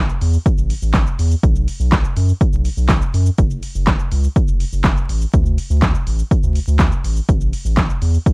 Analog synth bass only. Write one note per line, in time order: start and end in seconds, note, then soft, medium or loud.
0.22 0.38 E2 loud
0.58 0.74 A1 loud
0.82 1.07 A1 medium
1.19 1.35 E2 medium
1.43 1.68 B1 loud
1.80 2.04 B1 loud
2.17 2.33 F#2 medium
2.53 2.69 B1 loud
2.77 3.02 B1 medium
3.14 3.30 F#2 medium
3.38 3.63 F#1 loud
3.75 3.99 F#1 loud
4.12 4.28 C#2 loud
4.48 4.64 F#1 loud
4.73 4.97 F#1 medium
5.09 5.25 A1 loud
5.34 5.58 D2 loud
5.70 5.94 D2 loud
6.07 6.23 A1 loud
6.43 6.59 D2 loud
6.68 6.92 D2 medium
7.04 7.20 A1 medium
7.29 7.53 A1 loud
7.65 7.89 A1 loud
8.02 8.18 E2 medium